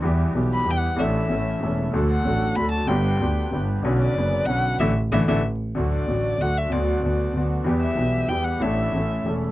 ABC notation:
X:1
M:3/4
L:1/16
Q:1/4=189
K:D
V:1 name="Violin"
z6 b2 g f3 | e8- e2 z2 | z2 f6 b2 a2 | g8 z4 |
z2 d6 f4 | e2 z2 e2 e2 z4 | z2 d6 f2 e2 | d8 z4 |
z2 e6 g2 f2 | e8 z4 |]
V:2 name="Bandoneon"
[B,EG]4 [B,EG]4 [B,EG]4 | [DEA]4 [CEA]4 [CEA]4 | [DFA]4 [DFA]4 [DFA]4 | [DGB]4 [DGB]4 [DGB]4 |
[CB]4 [C,B]4 [CB]4 | [DEA]2 z2 [DEA]2 [DEA]2 z4 | [A,DF]4 [A,DF]4 [A,DF]4 | [B,DF]4 [B,DF]4 [B,DF]4 |
[B,EG]4 [B,EG]4 [B,EG]4 | [DEA]4 [CEA]4 [CEA]4 |]
V:3 name="Upright piano" clef=bass
[E,,E,G,B,G]4 [B,,,B,,E,G,B,G]4 [E,,E,G,B,G]4 | [A,,,A,,E,A,DA]4 [A,,,A,,E,A,CA]4 [E,,,E,,E,A,CA]4 | [D,,D,F,A,DA]4 [A,,,A,,F,A,DA]4 [D,,D,F,A,DA]4 | [G,,,G,,D,G,B,G]4 [D,,D,G,B,G]4 [G,,,G,,D,G,B,G]4 |
[B,,,B,,D,B,CF]4 [F,,,F,,C,D,B,F]4 [B,,,B,,D,B,CF]4 | [D,E,A,]2 z2 [D,E,A,]2 [D,E,A,]2 z4 | [D,,D,F,A,F]4 [A,,,A,,D,F,A,F]4 [D,,D,F,A,F]4 | [D,,D,F,B,F]4 [D,,D,F,B,F]4 [D,,D,F,B,F]4 |
[E,,E,G,B,G]4 [B,,,B,,E,G,B,G]4 [E,,E,G,B,G]4 | [A,,,A,,E,A,DA]4 [A,,,A,,E,A,CA]4 [E,,,E,,E,A,CA]4 |]
V:4 name="Double bass" clef=bass
E,,4 B,,,4 E,,4 | A,,,4 A,,,4 E,,,4 | D,,4 A,,,4 D,,4 | G,,,4 D,,4 G,,,4 |
B,,,4 F,,,4 B,,,4 | A,,,2 z2 A,,,2 A,,,2 z4 | D,,4 A,,,4 D,,4 | D,,4 D,,4 D,,4 |
E,,4 B,,,4 E,,4 | A,,,4 A,,,4 E,,,4 |]